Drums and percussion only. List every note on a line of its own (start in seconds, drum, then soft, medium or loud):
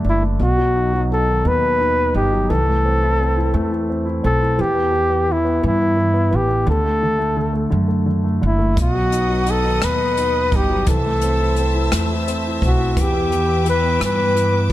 8.77 kick medium
8.77 closed hi-hat medium
9.12 closed hi-hat soft
9.46 closed hi-hat soft
9.82 cross-stick medium
9.82 closed hi-hat medium
10.17 closed hi-hat soft
10.52 kick medium
10.52 closed hi-hat soft
10.87 kick medium
10.87 closed hi-hat medium
11.21 closed hi-hat soft
11.56 closed hi-hat soft
11.92 cross-stick medium
11.92 closed hi-hat medium
12.28 closed hi-hat soft
12.62 kick medium
12.62 closed hi-hat soft
12.97 kick medium
12.97 closed hi-hat medium
13.32 closed hi-hat soft
13.66 closed hi-hat soft
14.01 cross-stick medium
14.01 closed hi-hat medium
14.37 closed hi-hat soft